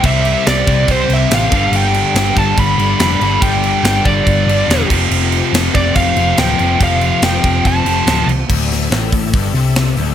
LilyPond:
<<
  \new Staff \with { instrumentName = "Lead electric guitar" } { \time 4/4 \key d \minor \tempo 4 = 142 e''4 d''4 c''8 e''8 f''4 | g''4. a''8 b''4 b''4 | g''4 g''8 d''2 r8 | r4. d''8 f''4 g''4 |
f''4 g''4 a''4. r8 | r1 | }
  \new Staff \with { instrumentName = "Tonewheel organ" } { \time 4/4 \key d \minor <c' g' d''>2.~ <c' g' d''>8 <g d' a'>8~ | <g d' a'>1~ | <g d' a'>2.~ <g d' a'>8 <f c' g'>8~ | <f c' g'>1~ |
<f c' g'>1 | <d' a' e''>1 | }
  \new Staff \with { instrumentName = "Distorted electric guitar" } { \clef bass \time 4/4 \key d \minor <c g c'>2.~ <c g c'>8 <g, d g>8~ | <g, d g>2. <g, d g>8 <g, d g>8~ | <g, d g>2. <g, d g>8 <f, c f>8~ | <f, c f>2. <f, c f>8 <f, c f>8~ |
<f, c f>2. <f, c f>8 r8 | r1 | }
  \new Staff \with { instrumentName = "Overdriven electric guitar" } { \clef bass \time 4/4 \key d \minor <c g c'>4. <c g c'>4. <c g c'>8 <g, d g>8~ | <g, d g>4 <g, d g>4. <g, d g>4 <g, d g>8~ | <g, d g>4 <g, d g>4. <g, d g>4 <f, c f>8~ | <f, c f>4 <f, c f>4. <f, c f>4 <f, c f>8~ |
<f, c f>4 <f, c f>4. <f, c f>4 r8 | d,4 a,4 g,8 c4 d,8 | }
  \new Staff \with { instrumentName = "Picked electric bass" } { \clef bass \time 4/4 \key d \minor c,4 c,8 c,8 c,8 c,8 a,,8 g,,8 | g,,4 g,,8 g,,8 g,,8 g,,8 f,,8 g,,8 | g,,4 g,,8 g,,8 g,,8 g,,8 e,,8 f,,8 | f,,4 f,,8 f,,8 f,,8 f,,8 d,,8 f,,8 |
f,,4 f,,8 f,,8 f,,8 f,,8 d,,8 c,8 | d,,4 a,,4 g,,8 c,4 d,,8 | }
  \new DrumStaff \with { instrumentName = "Drums" } \drummode { \time 4/4 <cymc bd>8 cymc8 <cymc sn>8 <cymc bd>8 <cymc bd>8 cymc8 <cymc sn>8 <cymc bd>8 | cymc8 cymc8 <cymc sn>8 <cymc bd>8 <cymc bd>8 cymc8 <cymc sn>8 cymc8 | <cymc bd>8 cymc8 <cymc sn>8 <cymc bd>8 <cymc bd>8 cymc8 <cymc sn>8 <cymc bd>8 | cymc8 cymc8 <cymc sn>8 <cymc bd>8 <cymc bd>8 cymc8 <cymc sn>8 cymc8 |
<cymc bd>8 cymc8 <cymc sn>8 <cymc bd>8 <cymc bd>8 cymc8 <cymc sn>8 cymc8 | <cymc bd>8 <hho sn>8 <hho sn>8 <hho bd>8 <hho bd>8 hho8 <hho sn>8 hho8 | }
>>